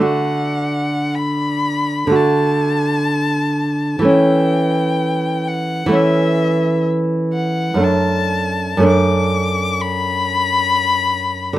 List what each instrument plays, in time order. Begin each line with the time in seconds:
Already playing: nylon-string guitar D3
0.00 nylon-string guitar A3 F#4, violin F#5
1.15 violin B5
2.07 nylon-string guitar D3 A3
2.12 nylon-string guitar F#4, violin A5
3.99 nylon-string guitar E3 A3
4.05 nylon-string guitar C#4, violin G5
5.48 violin F#5
5.86 nylon-string guitar E3 A3
5.92 nylon-string guitar C#4, violin E5
7.33 violin F#5
7.74 nylon-string guitar F#2 A3
7.80 nylon-string guitar D4, violin A5
8.77 nylon-string guitar F#2 A3
8.83 nylon-string guitar D4, violin D6
9.81 violin B5
11.53 nylon-string guitar D3